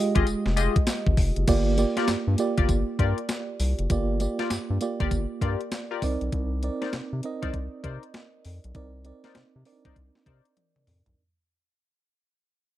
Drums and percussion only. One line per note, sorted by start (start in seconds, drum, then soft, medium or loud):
0.15 kick loud
0.15 closed hi-hat medium
0.27 closed hi-hat medium
0.27 tambourine medium
0.46 snare medium
0.57 closed hi-hat medium
0.57 tambourine medium
0.76 kick loud
0.76 closed hi-hat medium
0.87 snare loud
0.87 closed hi-hat medium
0.87 tambourine loud
1.07 kick medium
1.17 kick medium
1.17 open hi-hat medium
1.36 closed hi-hat medium
1.48 kick loud
1.48 closed hi-hat medium
1.48 crash loud
1.48 tambourine medium
1.78 closed hi-hat medium
1.78 tambourine medium
1.97 snare medium
1.97 closed hi-hat medium
2.08 snare loud
2.08 closed hi-hat medium
2.08 tambourine medium
2.38 closed hi-hat medium
2.38 tambourine medium
2.58 kick loud
2.58 closed hi-hat medium
2.69 kick medium
2.69 closed hi-hat medium
2.69 tambourine medium
2.99 kick medium
2.99 closed hi-hat medium
3.18 closed hi-hat medium
3.29 snare loud
3.29 closed hi-hat medium
3.29 tambourine loud
3.60 open hi-hat medium
3.60 tambourine medium
3.79 closed hi-hat medium
3.90 kick loud
3.90 closed hi-hat medium
3.90 tambourine medium
4.20 closed hi-hat medium
4.20 tambourine medium
4.39 snare medium
4.39 closed hi-hat medium
4.50 snare loud
4.50 closed hi-hat medium
4.50 tambourine loud
4.81 closed hi-hat medium
4.81 tambourine medium
5.00 kick loud
5.00 closed hi-hat medium
5.11 kick medium
5.11 closed hi-hat medium
5.11 tambourine medium
5.41 kick medium
5.41 closed hi-hat medium
5.61 closed hi-hat medium
5.72 snare loud
5.72 closed hi-hat medium
5.72 tambourine medium
6.02 kick medium
6.02 open hi-hat medium
6.02 tambourine medium
6.21 closed hi-hat medium
6.32 kick loud
6.32 closed hi-hat medium
6.63 closed hi-hat medium
6.82 snare medium
6.82 closed hi-hat medium
6.93 snare loud
6.93 closed hi-hat medium
7.23 closed hi-hat medium
7.43 kick loud
7.43 closed hi-hat medium
7.54 kick medium
7.54 closed hi-hat medium
7.84 kick medium
7.84 closed hi-hat medium
8.03 closed hi-hat medium
8.14 snare loud
8.14 closed hi-hat medium
8.45 open hi-hat medium
8.64 closed hi-hat medium
8.75 kick loud
8.75 closed hi-hat medium
9.05 closed hi-hat medium
9.24 snare medium
9.24 closed hi-hat medium
9.35 snare loud
9.35 closed hi-hat medium
9.65 open hi-hat medium
9.85 kick loud
9.85 closed hi-hat medium
9.96 kick medium
9.96 closed hi-hat medium
10.15 snare medium
10.26 kick medium
10.26 closed hi-hat medium
10.45 closed hi-hat medium
10.57 closed hi-hat medium
10.57 high tom medium
10.76 mid tom medium
10.87 mid tom loud
10.87 open hi-hat medium
11.06 closed hi-hat medium
11.06 floor tom loud